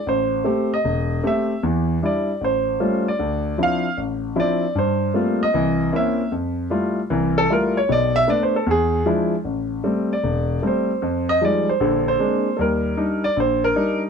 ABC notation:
X:1
M:4/4
L:1/8
Q:"Swing" 1/4=153
K:Aphr
V:1 name="Grand piano"
c3 _e3 =e2 | z2 d2 ^B3 d- | d2 f2 z2 d2 | c3 _e3 =e2 |
z4 z A B _d | d e (3d c A ^G2 z2 | z3 d3 c2- | c _e d c2 c3 |
[AB]3 d c B2 z |]
V:2 name="Grand piano"
A,,,2 [A,CG] z E,,,2 [A,CG] z | [E,,E,]2 [G,DE] z A,,,2 [G,A,^C^E] z | D,,2 [F,CDE] z A,,,2 [F,CDE] z | G,,2 [G,A,B,CF] z [C,,E,]2 [B,C_DE] z |
F,,2 [G,A,EF] z [C,,E,]2 [G,A,EF] z | [=B,,,=B,,]2 [A,=B,D] z E,,2 [F,^G,DE] z | A,,,2 [G,A,C] z E,,,2 [G,A,C] z | F,,2 [F,G,_A,_E] z [B,,,D,]2 [A,B,CD] z |
[_E,,G,]2 [G,D_E] z B,,,2 [G,DE] z |]